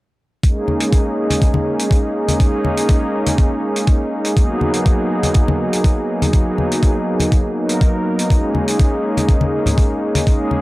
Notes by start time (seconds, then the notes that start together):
0.43 G#3 A#3 C#4 D#4 G#4, kick, closed hi-hat
0.68 high conga
0.80 G#3 A#3 C#4 D#4 G#4, closed hi-hat
0.93 kick, closed hi-hat
1.30 closed hi-hat, high conga
1.42 kick, closed hi-hat
1.54 high conga
1.79 closed hi-hat
1.91 kick, closed hi-hat
2.28 closed hi-hat, high conga
2.40 G#3 A#3 C#4 D#4 G#4, kick, closed hi-hat
2.65 high conga
2.77 G#3 A#3 C#4 D#4 G#4, closed hi-hat
2.89 kick, closed hi-hat
3.26 closed hi-hat, high conga
3.38 kick, closed hi-hat
3.76 closed hi-hat
3.87 kick, closed hi-hat
4.25 closed hi-hat
4.36 F#3 A#3 B3 D#4 G#4, kick, closed hi-hat
4.61 high conga
4.73 F#3 A#3 B3 D#4 G#4, closed hi-hat
4.86 kick, closed hi-hat
5.23 closed hi-hat, high conga
5.34 kick, closed hi-hat
5.48 high conga
5.73 closed hi-hat
5.84 kick, closed hi-hat
6.22 closed hi-hat, high conga
6.33 F#3 A#3 B3 D#4 G#4, kick, closed hi-hat
6.58 high conga
6.70 F#3 A#3 B3 D#4 G#4, closed hi-hat
6.83 kick, closed hi-hat
7.20 closed hi-hat, high conga
7.32 kick, closed hi-hat
7.56 F#3 A#3 B3 D#4 A#4
7.69 closed hi-hat
7.81 kick, closed hi-hat
8.19 closed hi-hat
8.30 G#3 A#3 C#4 D#4 G#4, kick, closed hi-hat
8.55 high conga
8.67 G#3 A#3 C#4 D#4 G#4, closed hi-hat
8.79 kick, closed hi-hat
9.17 closed hi-hat, high conga
9.28 kick, closed hi-hat
9.41 high conga
9.66 closed hi-hat, low conga
9.78 kick, closed hi-hat
10.15 closed hi-hat, high conga
10.27 G#3 A#3 C#4 D#4 G#4, kick, closed hi-hat
10.51 high conga